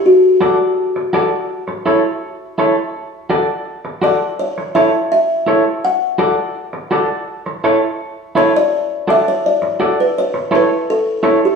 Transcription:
<<
  \new Staff \with { instrumentName = "Kalimba" } { \time 4/4 \key d \major \tempo 4 = 83 fis'2.~ fis'8 r8 | r4. d''8 cis''8 e''8 e''4 | fis''2. r8 cis''16 d''16~ | d''8 e''16 cis''16 d''8. b'16 cis''8 b'8 a'8. g'16 | }
  \new Staff \with { instrumentName = "Clean electric guitar" } { \time 4/4 \key d \major r8 <fis' a' d''>8 r8 <fis' a' d''>8 r8 <e' a' cis''>8 r8 <e' a' cis''>8 | r8 <fis' a' d''>8 r8 <fis' a' d''>8 r8 <e' a' cis''>8 r8 <e' a' cis''>8 | r8 <fis' a' d''>8 r8 <fis' a' d''>8 r8 <e' a' cis''>8 r8 <e' a' cis''>8 | r8 <fis' a' d''>8 r8 <fis' a' d''>8 r8 <e' a' cis''>8 r8 <e' a' cis''>8 | }
>>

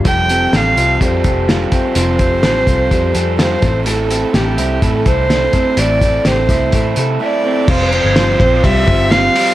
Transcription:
<<
  \new Staff \with { instrumentName = "Violin" } { \time 4/4 \key f \major \tempo 4 = 126 g''4 f''4 c''4 r8 c''8~ | c''2. c''4 | a'4 g'4 a'8 c''4. | d''4 c''4. r8 d''4 |
c''2 e''4 f''4 | }
  \new Staff \with { instrumentName = "Clean electric guitar" } { \time 4/4 \key f \major f8 c'8 a'8 f'8 g8 a'8 f'8 c'8 | f8 c'8 a'8 f'8 g8 a'8 f'8 a,8 | a,8 c'8 g'16 a'16 e'8 a8 a'8 d'16 e'16 c'8 | a,8 c'8 g'16 a'16 e'8 a8 a'8 e'8 c'8 |
<f f'>8 c'8 f'8 c'8 g8 f'8 c'8 g8 | }
  \new Staff \with { instrumentName = "Overdriven electric guitar" } { \time 4/4 \key f \major <f g c' g' a'>8 <c' g' a'>8 <g c' g' a'>8 <c' g' a'>8 <f g c' g' a'>8 <c' g' a'>8 <g c' g' a'>8 <c' g' a'>8 | <f g c' g' a'>8 <c' g' a'>8 <g c' g' a'>8 <c' g' a'>8 <f g c' g' a'>8 <c' g' a'>8 <g c' g' a'>8 <a c' e' a'>8 | <a, e a c' e' a'>8 <a c' e' a'>8 <a c' e' a'>8 <a c' e' a'>8 <a, e a c' e' a'>8 <a c' e' a'>8 <a c' e' a'>8 <a c' e' a'>8 | <a, e a c' e' a'>8 <a c' e' a'>8 <a c' e' a'>8 <a c' e' a'>8 <a, e a c' e' a'>8 <a c' e' a'>8 <a c' e' a'>8 <a c' e' a'>8 |
<f g c' f' c''>8 <c' f' c''>8 <f g c' f' c''>8 <c' f' c''>8 <g c' f' c''>8 <c' f' c''>8 <f g c' f' c''>8 <c' f' c''>8 | }
  \new Staff \with { instrumentName = "Picked electric bass" } { \clef bass \time 4/4 \key f \major f,,4 a,,8 c,8 f,8 f,,4 r8 | f,,4 a,,8 c,8 f,8 f,4 a,,8~ | a,,4 a,,8 c,8 a,8 c,4 r8 | a,,4 a,,8 c,8 a,8 c8 r4 |
f,,8. g,,8. bes,,8 c,8 g,,4 r8 | }
  \new DrumStaff \with { instrumentName = "Drums" } \drummode { \time 4/4 <hh bd>8 hh8 <hh sn>8 hh8 <hh bd>8 <hh bd>8 <hh sn>8 <hh bd>8 | hh8 <hh bd>8 <hh sn>8 <hh bd>8 <hh bd>8 hh8 <hh sn>8 <hh bd>8 | hh8 hh8 <hh sn>8 hh8 <hh bd>8 <hh bd>8 <hh sn>8 <hh bd>8 | hh8 <hh bd>8 <hh sn>8 <hh bd>8 <hh bd>8 hh8 r4 |
<cymc bd>8 cymr8 <cymr sn>8 <bd cymr>8 <bd cymr>8 <bd cymr>8 <cymr sn>8 <hho cymr>8 | }
>>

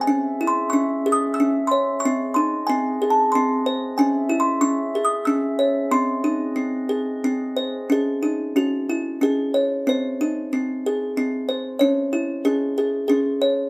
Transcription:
<<
  \new Staff \with { instrumentName = "Glass harmonica" } { \time 3/4 \key cis \minor \tempo 4 = 92 << { <cis' e''>2. | <bis dis''>2. | <cis' e''>2. | <bis dis''>2. |
r2. | r2. | r2. | } \\ { gis'2.~ | gis'2.~ | gis'2.~ | gis'2. |
r2. | r2. | r2. | } >> }
  \new Staff \with { instrumentName = "Music box" } { \time 3/4 \key cis \minor << { \tuplet 3/2 { gis''4 bis''8 cis'''4 dis'''8 } e'''8 bis''8 | cis'''8 bis''8 \tuplet 3/2 { gis''4 a''8 } bis''8. r16 | \tuplet 3/2 { gis''4 bis''8 cis'''4 dis'''8 } e'''4 | bis''2 r4 |
gis'4 fis'4 gis'4 | bis'2 r4 | cis''4 gis'4 gis'4 | } \\ { cis'8 e'8 cis'8 gis'8 cis'8 cis''8 | bis8 dis'8 bis8 gis'8 bis8 bis'8 | cis'8 e'8 cis'8 gis'8 cis'8 cis''8 | bis8 dis'8 bis8 gis'8 bis8 bis'8 |
cis'8 dis'8 cis'8 e'8 cis'8 cis''8 | bis8 dis'8 bis8 gis'8 bis8 bis'8 | cis'8 e'8 cis'8 gis'8 cis'8 cis''8 | } >> }
>>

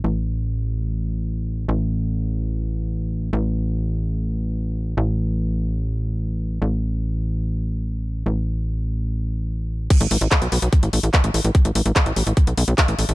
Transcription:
<<
  \new Staff \with { instrumentName = "Analog synth bass" } { \clef bass \time 4/4 \key g \mixolydian \tempo 4 = 146 a,,1 | a,,1 | a,,1 | a,,1 |
a,,1 | a,,1 | r16 a,,16 a,,16 a,,16 r16 b,,16 b,,16 b,,16 r16 a,,16 a,,16 a,,16 r16 a,,16 a,,16 a,,16 | r16 a,,16 a,,16 a,,16 r16 a,,16 a,,16 a,,16 r16 b,,16 b,,16 b,,16 r16 a,,16 a,,16 a,,16 | }
  \new DrumStaff \with { instrumentName = "Drums" } \drummode { \time 4/4 r4 r4 r4 r4 | r4 r4 r4 r4 | r4 r4 r4 r4 | r4 r4 r4 r4 |
r4 r4 r4 r4 | r4 r4 r4 r4 | <cymc hh bd>16 hh16 hho16 hh16 <hc hh bd>16 hh16 hho16 hh16 <hh bd>16 hh16 hho16 hh16 <hc hh bd>16 hh16 hho16 hh16 | <hh bd>16 hh16 hho16 hh16 <hc hh bd>16 hh16 hho16 hh16 <hh bd>16 hh16 hho16 hh16 <hc hh bd>16 hh16 hho16 hh16 | }
>>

